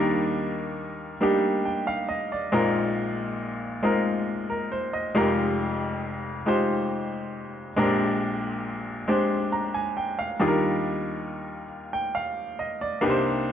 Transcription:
upright piano
Already playing: D#2 D#3 G3 A#3 D4 D#4 A#4 G5
1.21 G3 A#3 D4 D#4 G4
1.65 G5
1.87 F5
2.09 D#5
2.32 D5
2.52 A#1 A#2 G#3 C4 D#4 F4 A#4
3.83 G#3 C4 D#4 F4 A#4
4.50 A#4
4.72 C5
4.93 D#5
5.15 F1 F2 G#3 D#4 F4 G4 A#4
6.46 G#3 D#4 F4 G4 C5
7.76 A#1 A#2 G#3 C4 D4 G4 A#4
9.08 G#3 C4 D4 G4 C5
9.52 A#5
9.74 G#5
9.97 G5
10.19 F5
10.39 D#2 D#3 G3 D4 D#4 F4 G#4
10.48 A#4
11.93 G5
12.15 F5
12.59 D#5
12.81 D5
13.01 C2 C3 A#3 D4 D#4 G4 B4
13.10 C5

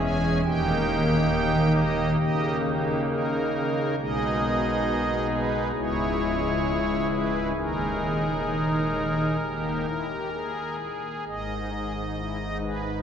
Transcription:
pipe organ
Already playing: E1 E2 G#3 C#4 G#4
0.00 G#5
0.44 D#1 D#2 A#3 D#4 G4 G5
1.75 D#5
2.19 C#3 A#3 D#4 G4 D#5
2.63 G4
3.07 A#4
3.99 B1 B2 G#3 D#4 G#4 D#5
5.31 B4
5.76 C#1 C#2 G#3 E4 G#4 C#5
7.10 B4
7.55 D#1 D#2 G#3 D#4 G#4 A#4
9.41 D#1 D#2 A#3 D#4 G4
9.87 E4
10.09 G4
10.33 G#4
11.27 G#1 G#2 D#5
11.49 D#4
11.72 G#4
11.95 D#4
12.18 E4
12.39 D#4
12.61 G#4 B4
12.83 D#4

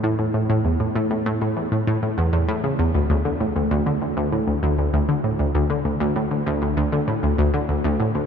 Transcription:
synth arpeggio sound
0.04 A2
0.19 A2
0.34 A2
0.50 A2
0.65 E2
0.80 A2
0.95 A2
1.11 A2
1.26 A2
1.41 A2
1.57 E2
1.72 A2
1.87 A2
2.03 A2
2.18 E2
2.33 E2
2.48 A2
2.64 C#3
2.79 E2
2.95 D2
3.10 D2
3.25 D3
3.40 A2
3.56 D2
3.71 D2
3.86 D3
4.02 D2
4.17 D2
4.32 A2
4.47 D2
4.63 D2
4.78 D2
4.94 D2
5.09 D3
5.24 A2
5.39 D2
5.55 D2
5.70 D3
5.85 D2
6.00 D2
6.16 A2
6.31 D2
6.47 D2
6.62 D2
6.77 D2
6.92 D3
7.08 A2
7.23 D2
7.38 D2
7.54 D3
7.69 D2
7.84 D2
8.00 A2
8.15 D2

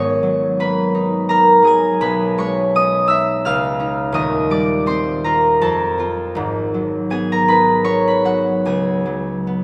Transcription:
harp
Already playing: G#1 B3 D#4 G#4 C#5 D#5 G#5 C#6 D#6
0.23 F#3
0.60 A#3 B4 B5
0.95 D#4
1.29 A#3 A#4 A#5
1.62 F#3 G#4
1.67 G#5
2.01 B1 B4 B5
2.38 G#3 C#5 C#6
2.75 C#4 D#5 D#6
3.07 D#4 E5 E6
3.45 C#2 F5 F6
3.79 C#4 D#4
4.12 D#1 D#2 D#5 D#6
4.50 G3 D5 D6
4.86 C4 C5 C6
5.24 F4 A#4 A#5
5.61 F2 A4 A5
5.98 C4 F4
6.35 G#1 G#2
6.74 F#3
7.10 B3 G#4 G#5
7.32 A#4 A#5
7.48 D#4 B4 B5
7.84 B3 C#5 C#6
8.08 B4 B5
8.25 F#3 F#4 F#5
8.65 C#2 G#4 G#5
9.06 F#3
9.47 B3

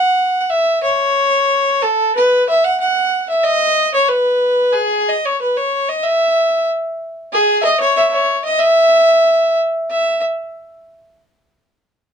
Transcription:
fiddle
Already playing: F#5
0.41 F#5
0.50 E5
0.83 C#5
1.82 A4
2.15 B4
2.49 E5
2.64 F#5
2.80 F#5
3.29 E5
3.43 D#5
3.94 C#5
4.08 B4
4.72 G#4
5.09 D#5
5.25 C#5
5.41 B4
5.57 C#5
5.89 D#5
6.03 E5
7.33 G#4
7.61 D#5 E5
7.80 C#5
7.97 E5
8.12 C#5
8.45 D#5
8.59 E5
9.90 E5

